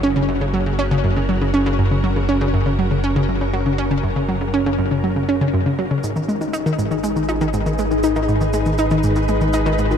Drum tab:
SH |----------------|----------------|----------------|xxxxxxxxxxxxxxxx|
CG |----------------|----------------|----------------|----------o-----|

SH |xxxxxxxxxxxxxxxx|
CG |-------------o-o|